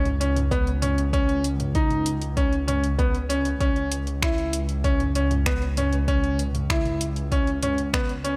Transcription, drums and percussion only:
0.05 closed hi-hat soft
0.05 mid tom medium
0.21 closed hi-hat medium
0.36 closed hi-hat soft
0.36 mid tom medium
0.51 kick loud
0.51 closed hi-hat soft
0.67 closed hi-hat soft
0.82 closed hi-hat medium
0.82 mid tom medium
0.98 closed hi-hat soft
1.13 kick loud
1.13 closed hi-hat soft
1.29 closed hi-hat soft
1.44 closed hi-hat medium
1.60 closed hi-hat soft
1.60 mid tom medium
1.75 kick loud
1.75 closed hi-hat soft
1.90 closed hi-hat soft
1.90 mid tom medium
2.06 closed hi-hat medium
2.22 closed hi-hat soft
2.37 kick loud
2.37 closed hi-hat soft
2.53 closed hi-hat soft
2.68 closed hi-hat medium
2.68 mid tom medium
2.84 closed hi-hat soft
2.99 kick loud
2.99 closed hi-hat soft
3.15 closed hi-hat soft
3.30 closed hi-hat medium
3.45 closed hi-hat soft
3.60 kick loud
3.60 closed hi-hat soft
3.76 closed hi-hat soft
3.92 closed hi-hat medium
4.07 closed hi-hat soft
4.22 finger snap medium
4.22 kick loud
4.22 closed hi-hat soft
4.38 closed hi-hat soft
4.53 closed hi-hat medium
4.69 closed hi-hat soft
4.84 kick loud
4.84 closed hi-hat soft
5.00 closed hi-hat soft
5.00 mid tom medium
5.15 closed hi-hat medium
5.31 closed hi-hat soft
5.31 mid tom medium
5.46 finger snap loud
5.46 kick loud
5.46 closed hi-hat soft
5.62 closed hi-hat soft
5.77 closed hi-hat medium
5.77 mid tom medium
5.93 closed hi-hat soft
6.08 kick loud
6.08 closed hi-hat soft
6.24 closed hi-hat soft
6.39 closed hi-hat medium
6.55 closed hi-hat soft
6.55 mid tom medium
6.70 finger snap medium
6.70 kick loud
6.70 closed hi-hat soft
6.85 closed hi-hat soft
6.85 mid tom medium
7.01 closed hi-hat medium
7.16 closed hi-hat soft
7.32 kick loud
7.32 closed hi-hat soft
7.47 closed hi-hat soft
7.63 closed hi-hat medium
7.63 mid tom medium
7.78 closed hi-hat soft
7.93 finger snap medium
7.93 kick loud
7.93 closed hi-hat soft
8.09 closed hi-hat soft
8.25 closed hi-hat medium

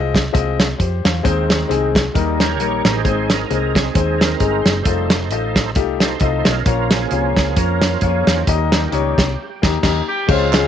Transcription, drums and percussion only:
0.15 kick medium
0.15 snare loud
0.15 closed hi-hat medium
0.35 kick loud
0.35 closed hi-hat medium
0.60 snare loud
0.60 closed hi-hat medium
0.80 kick medium
0.80 closed hi-hat medium
1.05 snare loud
1.05 closed hi-hat medium
1.25 kick loud
1.25 closed hi-hat medium
1.50 snare loud
1.50 closed hi-hat medium
1.71 closed hi-hat medium
1.95 kick medium
1.95 snare loud
1.95 closed hi-hat medium
2.15 kick loud
2.15 closed hi-hat medium
2.40 snare loud
2.40 closed hi-hat medium
2.60 closed hi-hat medium
2.85 snare medium
2.85 closed hi-hat medium
3.05 kick medium
3.05 closed hi-hat medium
3.30 snare loud
3.30 closed hi-hat medium
3.51 closed hi-hat medium
3.75 kick medium
3.75 snare medium
3.75 closed hi-hat medium
3.95 kick loud
3.95 closed hi-hat medium
4.21 snare loud
4.21 closed hi-hat medium
4.40 kick medium
4.40 closed hi-hat medium
4.66 snare medium
4.66 closed hi-hat medium
4.85 kick loud
4.85 closed hi-hat medium
5.10 snare loud
5.10 closed hi-hat medium
5.31 closed hi-hat medium
5.56 kick medium
5.56 snare medium
5.56 closed hi-hat medium
5.75 kick loud
5.75 closed hi-hat medium
6.00 snare medium
6.00 closed hi-hat medium
6.20 kick medium
6.20 closed hi-hat medium
6.45 snare medium
6.45 closed hi-hat medium
6.66 kick loud
6.66 closed hi-hat medium
6.91 snare loud
6.91 closed hi-hat medium
7.11 closed hi-hat medium
7.37 kick medium
7.37 snare loud
7.37 closed hi-hat medium
7.56 kick loud
7.56 closed hi-hat medium
7.82 snare loud
7.82 closed hi-hat medium
8.01 kick medium
8.01 closed hi-hat medium
8.27 snare loud
8.27 closed hi-hat medium
8.47 kick medium
8.47 closed hi-hat medium
8.72 snare loud
8.72 closed hi-hat medium
8.92 closed hi-hat medium
9.18 kick medium
9.18 snare medium
9.18 closed hi-hat medium
9.63 kick loud
9.63 snare loud
9.63 crash medium
9.83 kick medium
9.83 snare medium
9.83 crash medium
10.29 kick loud
10.29 crash medium
10.53 snare loud
10.53 clap medium
10.53 ride medium

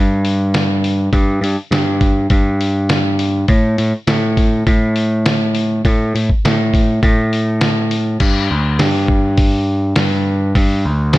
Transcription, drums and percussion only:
0.25 open hi-hat medium
0.54 snare loud
0.54 open hi-hat medium
0.84 open hi-hat medium
1.13 kick loud
1.13 open hi-hat medium
1.44 open hi-hat medium
1.72 snare loud
1.72 open hi-hat medium
2.01 kick medium
2.01 open hi-hat medium
2.30 kick loud
2.30 open hi-hat medium
2.61 open hi-hat medium
2.89 snare loud
2.89 open hi-hat medium
3.19 open hi-hat medium
3.48 kick loud
3.48 open hi-hat medium
3.78 open hi-hat medium
4.07 snare loud
4.07 open hi-hat medium
4.37 kick medium
4.37 open hi-hat medium
4.67 kick loud
4.67 open hi-hat medium
4.96 open hi-hat medium
5.26 snare loud
5.26 open hi-hat medium
5.55 open hi-hat medium
5.85 kick loud
5.85 open hi-hat medium
6.16 open hi-hat medium
6.30 kick medium
6.45 snare loud
6.45 open hi-hat medium
6.74 kick medium
6.74 open hi-hat medium
7.03 kick loud
7.03 open hi-hat medium
7.33 open hi-hat medium
7.61 snare loud
7.61 open hi-hat medium
7.91 open hi-hat medium
8.20 kick loud
8.20 open hi-hat medium
8.20 crash loud
8.79 snare loud
8.79 open hi-hat medium
9.08 kick medium
9.37 kick loud
9.37 open hi-hat medium
9.96 snare loud
9.96 open hi-hat medium
10.55 kick loud
10.55 open hi-hat medium
11.13 snare loud
11.13 open hi-hat medium

